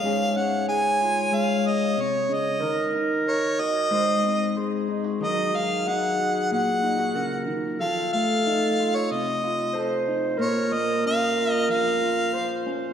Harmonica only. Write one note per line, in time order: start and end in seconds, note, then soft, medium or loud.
0.00 0.38 F5 medium
0.37 0.68 F#5 medium
0.69 1.37 G#5 medium
1.35 1.69 F5 medium
1.68 2.02 D#5 medium
2.01 2.35 C#5 medium
2.34 2.96 D#5 medium
3.28 3.62 C#5 medium
3.60 4.57 D#5 loud
5.24 5.58 D#5 medium
5.56 5.90 F5 medium
5.88 6.52 F#5 medium
6.53 7.45 F#5 medium
7.81 8.11 F5 medium
8.13 8.97 F5 medium
8.96 9.13 C#5 medium
9.12 10.08 D#5 medium
10.41 10.75 C#5 medium
10.73 11.05 D#5 medium
11.07 11.52 F5 loud
11.52 11.66 D#5 loud
11.70 12.63 F5 medium